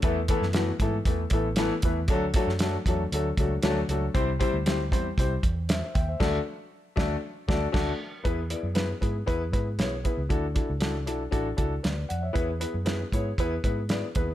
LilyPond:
<<
  \new Staff \with { instrumentName = "Grand piano" } { \time 4/4 \key e \mixolydian \tempo 4 = 117 << { r1 | r1 | r2. <c'' e''>8 <e'' g''>16 <c'' e''>16 | r1 |
r1 | r2. <b' d''>8 <d'' fis''>16 <cis'' e''>16~ | <cis'' e''>16 r2. r8. | } \\ { <e a b e' a'>16 r16 <e a b e' a'>16 r16 <e a b e' fis'>16 r16 <e a b e' a'>16 r16 <e a b e' a'>16 r16 <e a b e' a'>16 r16 <e a b e' a'>16 r16 <e a b e' b'>16 r16 | <fis a d' fis' a'>16 r16 <fis a d' fis' a'>16 r16 <fis a d' fis' a'>16 r16 <fis a d' fis' a'>16 r16 <fis a d' fis' a'>16 r16 <fis a d' fis' a'>16 r16 <fis a d' fis' a'>16 r16 <fis a d' fis' a'>16 r16 | <g c' e' g' c''>16 r16 <g c' e' g' c''>16 r16 <g c' e' g' c''>16 r16 <g c' e' g' c''>16 r16 <g c' e' g' c''>16 r4. r16 | <a d' fis' a' d''>8 r4 <a d' fis' a' d''>8 r8 <a d' fis' a' d''>8 <a d' fis' a' d''>8 r8 |
<b e' gis' b'>16 r16 <b e' gis' d''>16 r16 <b e' gis' b'>16 r16 <b e' gis' b'>16 r16 <b e' gis' b'>16 r16 <b e' gis' b'>16 r16 <b e' gis' cis''>16 r16 <b e' gis' b'>16 r16 | <d' e' fis' a'>16 r16 <d' e' fis' a'>16 r16 <d' e' fis' a'>16 r16 <d' e' fis' a'>16 r16 <d' e' fis' a'>16 r16 <d' e' fis' a'>16 r4 r16 | <b e' gis' b'>16 r16 <b e' gis' b'>16 r16 <b e' gis' b'>16 r16 <b e' gis' cis''>16 r16 <b e' gis' b'>16 r16 <b e' gis' b'>16 r16 <b e' gis' d''>16 r16 <b e' gis' b'>16 r16 | } >> }
  \new Staff \with { instrumentName = "Fingered electric bass" } { \clef bass \time 4/4 \key e \mixolydian e,8. fis,8. gis,8 e,8 a,,4 e,8 | d,8. fis,8. e,8 d,8 cis,8 d,8 cis,8 | c,8. d,8. e,8 c,8 e,4 dis,8 | d,8 r4 d,8 r8 d,8 d,8 r8 |
e,8. fis,8. gis,8 e,8 gis,8 b,,8. cis,16 | d,8. cis,8. b,,8 a,,8 cis,8 d,8 f,8 | e,8. fis,8. gis,8 e,8 gis,4 dis,8 | }
  \new DrumStaff \with { instrumentName = "Drums" } \drummode { \time 4/4 <hh bd>8 <hh bd>16 sn16 <hh sn>8 <hh bd>8 <hh bd>8 <hh bd>8 <hh sn>8 <hh bd>8 | <hh bd>8 <hh bd>16 sn16 <hh sn>8 <hh bd>8 hh8 <hh bd>8 <hh sn>8 hh8 | <hh bd>8 <hh bd>8 <hh sn>8 <hh bd>8 <hh bd>8 <hh bd>8 <hh sn>8 <hh bd>8 | <cymc bd sn>4 r8 <bd sn>8 r8 <bd sn>8 <cymc bd sn>4 |
<hh bd>8 hh8 <hh sn>8 <hh bd>8 <hh bd>8 <hh bd>8 <hh sn>8 <hh bd>8 | <hh bd>8 <hh bd>8 <hh sn>8 hh8 <hh bd>8 <hh bd>8 <hh sn>8 hh8 | <hh bd>8 hh8 <hh sn>8 <hh bd>8 <hh bd>8 <hh bd>8 <hh sn>8 <hh bd>8 | }
>>